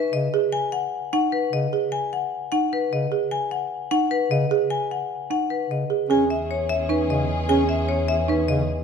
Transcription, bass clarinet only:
0.14 C#3
1.52 C#3
2.92 C#3
4.31 C#3
5.70 C#3
6.09 C#4
7.09 C#3
7.49 C#4
8.48 C#3

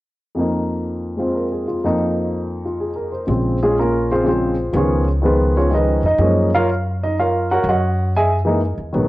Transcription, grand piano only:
0.35 F2 F3 A#3
0.40 D#4
1.16 G#3 C4 F4 C5
1.35 A#4
1.52 G#4
1.68 F4
1.84 F2 F3 A#3 D#4
2.65 F4
2.80 G#4
2.96 A#4
3.12 C5
3.27 C#3 F3 G#3 C4
3.63 G#3 C#4 F4 G#4
3.79 A#3 C#4 F4 A#4
4.11 C4 F4 G#4 C5
4.24 C#3 F3 G#3 C4
4.28 F4 G#4 C5
4.73 D#3 F3 G#3 B3 F4
4.77 C#4 G#4 C#5
5.22 D#3 F3 G#3 B3 G#4 B4
5.26 F4
5.57 C#4 F4 G#4 C#5
5.70 D#3 F3 G#3 C#4
5.74 D#4 G#4 B4 D#5
6.06 D#4 D#5
6.19 F3 G#3 A#3 C#4
6.55 F4 A#4 C#5 F5
7.04 D#4 D#5
7.19 F4 A#4 C#5 F5
7.52 F#4 A#4 C#5 F#5
7.69 F#4 C#5 D#5 F#5
8.17 G#4 D#5 E5 G#5
8.45 E3 G#3 A#3 D#4
8.93 D#3 F#3 G#3 B3

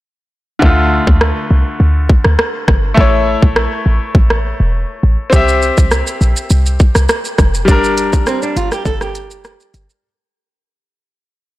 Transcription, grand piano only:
0.59 D3 A3
0.65 F4
2.94 A3 E4
3.01 C#5
5.30 C4 G4
5.36 E5
7.65 G3 D4
7.71 A#4

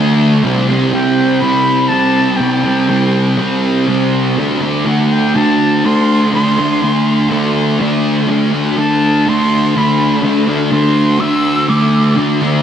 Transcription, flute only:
0.92 G5
1.40 B5
1.88 A5
2.36 G5
4.87 F#5
5.12 G5
5.36 A5
5.85 C6
6.34 C6
8.77 A5
9.29 C6
9.78 B5
10.73 C6
11.20 E6
11.69 D6

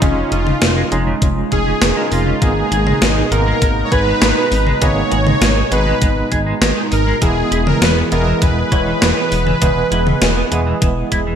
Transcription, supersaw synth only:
0.02 C#4
0.32 F4
1.52 G#4
2.12 F4
2.42 G#4
3.32 A#4
3.85 C#5
3.92 B4
4.82 C#5
5.72 B4
6.92 A#4
7.22 G#4
7.67 A#4
7.82 B4
8.12 A#4
8.42 B4

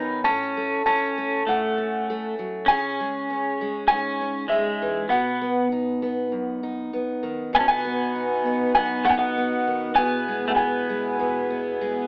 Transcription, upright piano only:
Already playing: B5
0.24 A5
0.86 A5
1.49 F#5
2.68 G#5
3.88 G#5
4.49 E5
5.10 F#5
7.55 G#5
7.59 A5
7.68 G#5
8.75 G#5
9.05 F#5
9.10 G#5
9.19 F#5
9.96 G#5
10.50 F#5
10.56 G#5

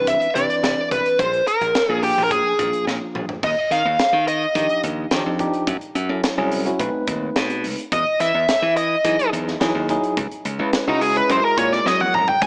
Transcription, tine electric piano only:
Already playing: E3 C4 D4 B4
0.35 E3 C4 D4 B4
1.89 F3 A#3 D4 G#4
2.60 F3 A#3 D4 F4
4.55 F3 D4 D#4 G4
5.12 F3 D4 D#4 G4
5.39 F3 D4 D#4 G4
6.09 F#3 C#4 E4 A4
6.37 F#3 C#4 E4 G#4
6.65 F#3 C#4 E4 F#4
6.79 A3 C4 D#4 B4
9.04 F#3 D#4 E4 G#4
9.60 F#3 D#4 E4 G#4
9.89 F#3 D#4 E4 G#4
10.59 G#3 C#4 E4 B4
10.87 G#3 C#4 E4 F#4
11.15 G#3 C#4 E4 B4
11.29 G#3 E4 F#4 A#4

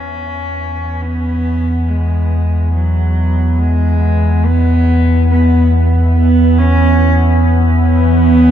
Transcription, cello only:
Already playing: C#4
1.02 B3
1.88 G#3
2.74 F#3
3.59 G#3
4.46 B3
5.30 B3
6.16 B3
6.58 C#4
7.86 B3

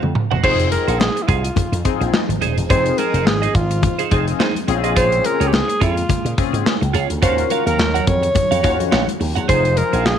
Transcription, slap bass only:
0.03 F2
0.31 E1
0.44 F1
0.88 A#1
1.28 C2
1.57 muted slap bass stroke
1.72 F2
2.01 A#1
2.29 G#1
2.41 D#1
2.57 E1
2.70 F1
3.14 F1
3.26 G#1
3.55 G#1
4.12 F1
4.68 A#1
5.40 C#2
5.81 F2
6.25 A#2
6.53 G#2
6.82 C#2
6.94 C#2
7.10 D2
7.23 D#2
7.66 D#2
7.79 D#2
8.07 F2
8.51 F2
8.64 D#2
8.80 F2
8.92 A#1
9.20 D#2
9.36 E2
9.49 F1
9.93 A#1

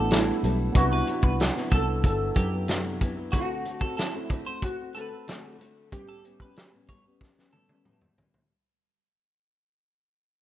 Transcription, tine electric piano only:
Already playing: A3 B3 D4 E4 F#5
0.72 B3 D4 E4
0.78 F#5

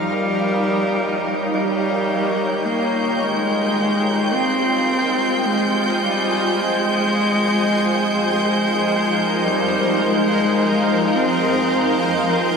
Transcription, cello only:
Already playing: G3
1.51 G3
2.65 A#3
3.21 G#3
4.33 C4
5.47 G#3
6.04 G3
6.62 G#3
8.32 G#3
9.44 G3
10.02 G#3
11.15 C4

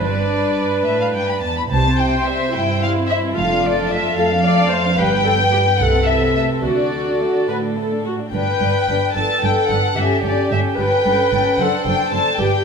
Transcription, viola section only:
0.01 B4
1.72 C5
2.55 E4
3.36 F4
4.18 A4
4.44 D5
4.70 C5
4.97 B4
5.24 A4
5.51 G4
5.79 A4
6.63 F#4
7.48 B4
7.76 A4
8.05 F#4
8.33 B4
9.16 A4
9.97 G4
10.78 B4
11.59 A4
12.38 G4

